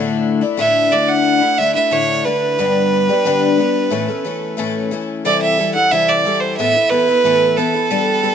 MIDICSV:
0, 0, Header, 1, 3, 480
1, 0, Start_track
1, 0, Tempo, 664452
1, 1862, Time_signature, 4, 2, 24, 8
1, 6031, End_track
2, 0, Start_track
2, 0, Title_t, "Fiddle"
2, 0, Program_c, 0, 110
2, 431, Note_on_c, 0, 76, 95
2, 665, Note_on_c, 0, 74, 85
2, 676, Note_off_c, 0, 76, 0
2, 783, Note_on_c, 0, 78, 96
2, 794, Note_off_c, 0, 74, 0
2, 1142, Note_on_c, 0, 76, 101
2, 1153, Note_off_c, 0, 78, 0
2, 1258, Note_off_c, 0, 76, 0
2, 1263, Note_on_c, 0, 76, 85
2, 1393, Note_on_c, 0, 73, 90
2, 1404, Note_off_c, 0, 76, 0
2, 1624, Note_on_c, 0, 71, 86
2, 1635, Note_off_c, 0, 73, 0
2, 3545, Note_off_c, 0, 71, 0
2, 3796, Note_on_c, 0, 74, 87
2, 3902, Note_off_c, 0, 74, 0
2, 3917, Note_on_c, 0, 76, 89
2, 4134, Note_off_c, 0, 76, 0
2, 4150, Note_on_c, 0, 78, 95
2, 4273, Note_on_c, 0, 76, 103
2, 4283, Note_off_c, 0, 78, 0
2, 4398, Note_on_c, 0, 74, 89
2, 4409, Note_off_c, 0, 76, 0
2, 4628, Note_on_c, 0, 72, 78
2, 4639, Note_off_c, 0, 74, 0
2, 4742, Note_off_c, 0, 72, 0
2, 4747, Note_on_c, 0, 76, 96
2, 4985, Note_on_c, 0, 71, 103
2, 4996, Note_off_c, 0, 76, 0
2, 5468, Note_on_c, 0, 69, 85
2, 5479, Note_off_c, 0, 71, 0
2, 6031, Note_off_c, 0, 69, 0
2, 6031, End_track
3, 0, Start_track
3, 0, Title_t, "Twelve-string acoustic guitar"
3, 0, Program_c, 1, 25
3, 0, Note_on_c, 1, 45, 80
3, 0, Note_on_c, 1, 50, 91
3, 0, Note_on_c, 1, 57, 92
3, 0, Note_on_c, 1, 62, 94
3, 0, Note_on_c, 1, 64, 86
3, 289, Note_off_c, 1, 64, 0
3, 297, Note_off_c, 1, 62, 0
3, 297, Note_on_c, 1, 64, 55
3, 302, Note_off_c, 1, 45, 0
3, 303, Note_off_c, 1, 50, 0
3, 305, Note_off_c, 1, 57, 0
3, 306, Note_on_c, 1, 62, 51
3, 314, Note_on_c, 1, 57, 39
3, 414, Note_off_c, 1, 57, 0
3, 414, Note_on_c, 1, 50, 69
3, 415, Note_off_c, 1, 62, 0
3, 415, Note_on_c, 1, 45, 80
3, 419, Note_off_c, 1, 64, 0
3, 422, Note_on_c, 1, 57, 74
3, 424, Note_on_c, 1, 62, 81
3, 426, Note_on_c, 1, 64, 84
3, 647, Note_off_c, 1, 50, 0
3, 654, Note_off_c, 1, 57, 0
3, 656, Note_on_c, 1, 50, 59
3, 658, Note_off_c, 1, 45, 0
3, 661, Note_off_c, 1, 62, 0
3, 663, Note_on_c, 1, 57, 59
3, 664, Note_off_c, 1, 64, 0
3, 670, Note_on_c, 1, 62, 60
3, 676, Note_on_c, 1, 64, 64
3, 1008, Note_off_c, 1, 64, 0
3, 1016, Note_on_c, 1, 64, 53
3, 1019, Note_off_c, 1, 50, 0
3, 1019, Note_off_c, 1, 62, 0
3, 1022, Note_off_c, 1, 57, 0
3, 1028, Note_on_c, 1, 62, 45
3, 1035, Note_on_c, 1, 57, 43
3, 1139, Note_off_c, 1, 64, 0
3, 1142, Note_on_c, 1, 50, 56
3, 1143, Note_off_c, 1, 57, 0
3, 1145, Note_off_c, 1, 62, 0
3, 1152, Note_on_c, 1, 57, 58
3, 1156, Note_on_c, 1, 62, 66
3, 1160, Note_on_c, 1, 64, 64
3, 1250, Note_off_c, 1, 64, 0
3, 1257, Note_off_c, 1, 62, 0
3, 1258, Note_on_c, 1, 64, 45
3, 1262, Note_off_c, 1, 50, 0
3, 1262, Note_off_c, 1, 57, 0
3, 1265, Note_on_c, 1, 62, 39
3, 1270, Note_on_c, 1, 57, 35
3, 1378, Note_off_c, 1, 62, 0
3, 1380, Note_off_c, 1, 57, 0
3, 1380, Note_off_c, 1, 64, 0
3, 1381, Note_on_c, 1, 45, 73
3, 1382, Note_on_c, 1, 50, 74
3, 1387, Note_on_c, 1, 62, 75
3, 1389, Note_on_c, 1, 57, 76
3, 1392, Note_on_c, 1, 64, 72
3, 1616, Note_off_c, 1, 50, 0
3, 1622, Note_off_c, 1, 45, 0
3, 1623, Note_off_c, 1, 57, 0
3, 1624, Note_on_c, 1, 50, 60
3, 1625, Note_off_c, 1, 62, 0
3, 1627, Note_off_c, 1, 64, 0
3, 1631, Note_on_c, 1, 57, 63
3, 1638, Note_on_c, 1, 62, 65
3, 1638, Note_on_c, 1, 64, 65
3, 1861, Note_off_c, 1, 50, 0
3, 1867, Note_off_c, 1, 57, 0
3, 1868, Note_on_c, 1, 43, 79
3, 1870, Note_off_c, 1, 62, 0
3, 1870, Note_on_c, 1, 50, 69
3, 1871, Note_off_c, 1, 64, 0
3, 1872, Note_on_c, 1, 55, 76
3, 1875, Note_on_c, 1, 59, 84
3, 1878, Note_on_c, 1, 62, 69
3, 1880, Note_on_c, 1, 67, 85
3, 2224, Note_off_c, 1, 67, 0
3, 2226, Note_off_c, 1, 43, 0
3, 2226, Note_off_c, 1, 50, 0
3, 2227, Note_off_c, 1, 55, 0
3, 2229, Note_off_c, 1, 59, 0
3, 2230, Note_off_c, 1, 62, 0
3, 2233, Note_on_c, 1, 67, 59
3, 2240, Note_on_c, 1, 62, 54
3, 2243, Note_on_c, 1, 59, 45
3, 2251, Note_on_c, 1, 55, 45
3, 2348, Note_off_c, 1, 55, 0
3, 2348, Note_off_c, 1, 67, 0
3, 2348, Note_on_c, 1, 43, 76
3, 2350, Note_off_c, 1, 59, 0
3, 2351, Note_off_c, 1, 62, 0
3, 2353, Note_on_c, 1, 50, 85
3, 2356, Note_on_c, 1, 55, 79
3, 2359, Note_on_c, 1, 59, 86
3, 2361, Note_on_c, 1, 62, 87
3, 2361, Note_on_c, 1, 67, 94
3, 2574, Note_off_c, 1, 55, 0
3, 2583, Note_on_c, 1, 55, 64
3, 2586, Note_off_c, 1, 43, 0
3, 2586, Note_off_c, 1, 59, 0
3, 2588, Note_off_c, 1, 50, 0
3, 2592, Note_off_c, 1, 62, 0
3, 2592, Note_off_c, 1, 67, 0
3, 2595, Note_on_c, 1, 59, 62
3, 2600, Note_on_c, 1, 62, 66
3, 2605, Note_on_c, 1, 67, 68
3, 2820, Note_on_c, 1, 45, 75
3, 2823, Note_off_c, 1, 55, 0
3, 2823, Note_off_c, 1, 59, 0
3, 2826, Note_on_c, 1, 57, 80
3, 2827, Note_on_c, 1, 52, 70
3, 2828, Note_off_c, 1, 62, 0
3, 2831, Note_on_c, 1, 61, 80
3, 2832, Note_off_c, 1, 67, 0
3, 2835, Note_on_c, 1, 69, 85
3, 2940, Note_off_c, 1, 69, 0
3, 2942, Note_off_c, 1, 45, 0
3, 2945, Note_off_c, 1, 52, 0
3, 2945, Note_off_c, 1, 57, 0
3, 2947, Note_off_c, 1, 61, 0
3, 2949, Note_on_c, 1, 69, 50
3, 2956, Note_on_c, 1, 61, 48
3, 2964, Note_on_c, 1, 57, 45
3, 3064, Note_off_c, 1, 57, 0
3, 3066, Note_off_c, 1, 69, 0
3, 3066, Note_on_c, 1, 52, 66
3, 3067, Note_off_c, 1, 61, 0
3, 3073, Note_on_c, 1, 57, 64
3, 3076, Note_on_c, 1, 61, 65
3, 3082, Note_on_c, 1, 69, 71
3, 3300, Note_off_c, 1, 52, 0
3, 3301, Note_on_c, 1, 45, 72
3, 3304, Note_off_c, 1, 57, 0
3, 3306, Note_off_c, 1, 61, 0
3, 3309, Note_off_c, 1, 69, 0
3, 3309, Note_on_c, 1, 52, 80
3, 3313, Note_on_c, 1, 57, 77
3, 3315, Note_on_c, 1, 61, 87
3, 3318, Note_on_c, 1, 69, 96
3, 3539, Note_off_c, 1, 52, 0
3, 3542, Note_off_c, 1, 45, 0
3, 3548, Note_off_c, 1, 57, 0
3, 3548, Note_on_c, 1, 52, 64
3, 3549, Note_off_c, 1, 61, 0
3, 3551, Note_off_c, 1, 69, 0
3, 3556, Note_on_c, 1, 57, 62
3, 3561, Note_on_c, 1, 61, 62
3, 3565, Note_on_c, 1, 69, 70
3, 3786, Note_off_c, 1, 52, 0
3, 3790, Note_off_c, 1, 57, 0
3, 3792, Note_off_c, 1, 61, 0
3, 3793, Note_on_c, 1, 48, 73
3, 3794, Note_off_c, 1, 69, 0
3, 3794, Note_on_c, 1, 52, 79
3, 3797, Note_on_c, 1, 55, 80
3, 3801, Note_on_c, 1, 64, 81
3, 3803, Note_on_c, 1, 69, 77
3, 4024, Note_off_c, 1, 52, 0
3, 4028, Note_off_c, 1, 48, 0
3, 4030, Note_off_c, 1, 55, 0
3, 4032, Note_on_c, 1, 52, 58
3, 4033, Note_off_c, 1, 64, 0
3, 4034, Note_off_c, 1, 69, 0
3, 4041, Note_on_c, 1, 55, 60
3, 4043, Note_on_c, 1, 64, 57
3, 4048, Note_on_c, 1, 69, 68
3, 4144, Note_off_c, 1, 69, 0
3, 4148, Note_off_c, 1, 52, 0
3, 4149, Note_off_c, 1, 64, 0
3, 4152, Note_off_c, 1, 55, 0
3, 4153, Note_on_c, 1, 69, 51
3, 4158, Note_on_c, 1, 64, 47
3, 4167, Note_on_c, 1, 55, 42
3, 4268, Note_off_c, 1, 69, 0
3, 4271, Note_off_c, 1, 55, 0
3, 4271, Note_off_c, 1, 64, 0
3, 4272, Note_on_c, 1, 48, 70
3, 4276, Note_on_c, 1, 52, 75
3, 4279, Note_on_c, 1, 55, 73
3, 4280, Note_on_c, 1, 64, 77
3, 4284, Note_on_c, 1, 69, 81
3, 4506, Note_off_c, 1, 52, 0
3, 4508, Note_off_c, 1, 48, 0
3, 4512, Note_off_c, 1, 55, 0
3, 4512, Note_off_c, 1, 64, 0
3, 4514, Note_off_c, 1, 69, 0
3, 4515, Note_on_c, 1, 52, 59
3, 4522, Note_on_c, 1, 55, 59
3, 4527, Note_on_c, 1, 64, 63
3, 4530, Note_on_c, 1, 69, 59
3, 4749, Note_off_c, 1, 52, 0
3, 4753, Note_off_c, 1, 55, 0
3, 4755, Note_off_c, 1, 64, 0
3, 4757, Note_off_c, 1, 69, 0
3, 4758, Note_on_c, 1, 45, 71
3, 4759, Note_on_c, 1, 52, 67
3, 4764, Note_on_c, 1, 59, 73
3, 4766, Note_on_c, 1, 69, 74
3, 4767, Note_on_c, 1, 64, 68
3, 4863, Note_off_c, 1, 69, 0
3, 4871, Note_off_c, 1, 45, 0
3, 4871, Note_off_c, 1, 52, 0
3, 4872, Note_off_c, 1, 64, 0
3, 4872, Note_on_c, 1, 69, 51
3, 4874, Note_off_c, 1, 59, 0
3, 4881, Note_on_c, 1, 64, 45
3, 4889, Note_on_c, 1, 59, 43
3, 4986, Note_off_c, 1, 59, 0
3, 4988, Note_off_c, 1, 69, 0
3, 4988, Note_on_c, 1, 52, 53
3, 4992, Note_off_c, 1, 64, 0
3, 4994, Note_on_c, 1, 59, 62
3, 5001, Note_on_c, 1, 64, 56
3, 5008, Note_on_c, 1, 69, 60
3, 5103, Note_off_c, 1, 69, 0
3, 5106, Note_off_c, 1, 52, 0
3, 5109, Note_off_c, 1, 59, 0
3, 5112, Note_off_c, 1, 64, 0
3, 5112, Note_on_c, 1, 69, 56
3, 5123, Note_on_c, 1, 64, 46
3, 5129, Note_on_c, 1, 59, 41
3, 5228, Note_off_c, 1, 59, 0
3, 5228, Note_off_c, 1, 69, 0
3, 5229, Note_on_c, 1, 45, 72
3, 5230, Note_off_c, 1, 64, 0
3, 5236, Note_on_c, 1, 52, 75
3, 5236, Note_on_c, 1, 59, 74
3, 5239, Note_on_c, 1, 64, 72
3, 5245, Note_on_c, 1, 69, 79
3, 5461, Note_off_c, 1, 52, 0
3, 5466, Note_off_c, 1, 45, 0
3, 5466, Note_off_c, 1, 59, 0
3, 5470, Note_on_c, 1, 52, 56
3, 5471, Note_off_c, 1, 64, 0
3, 5474, Note_off_c, 1, 69, 0
3, 5475, Note_on_c, 1, 59, 65
3, 5481, Note_on_c, 1, 64, 67
3, 5484, Note_on_c, 1, 69, 64
3, 5582, Note_off_c, 1, 69, 0
3, 5586, Note_off_c, 1, 52, 0
3, 5589, Note_off_c, 1, 59, 0
3, 5591, Note_on_c, 1, 69, 50
3, 5592, Note_off_c, 1, 64, 0
3, 5600, Note_on_c, 1, 64, 44
3, 5608, Note_on_c, 1, 59, 42
3, 5701, Note_off_c, 1, 59, 0
3, 5707, Note_off_c, 1, 69, 0
3, 5710, Note_on_c, 1, 59, 70
3, 5711, Note_off_c, 1, 64, 0
3, 5712, Note_on_c, 1, 55, 82
3, 5717, Note_on_c, 1, 62, 84
3, 5717, Note_on_c, 1, 69, 79
3, 5935, Note_off_c, 1, 55, 0
3, 5940, Note_off_c, 1, 59, 0
3, 5944, Note_off_c, 1, 62, 0
3, 5944, Note_on_c, 1, 55, 57
3, 5948, Note_on_c, 1, 59, 65
3, 5950, Note_off_c, 1, 69, 0
3, 5953, Note_on_c, 1, 62, 63
3, 5960, Note_on_c, 1, 69, 69
3, 6031, Note_off_c, 1, 55, 0
3, 6031, Note_off_c, 1, 59, 0
3, 6031, Note_off_c, 1, 62, 0
3, 6031, Note_off_c, 1, 69, 0
3, 6031, End_track
0, 0, End_of_file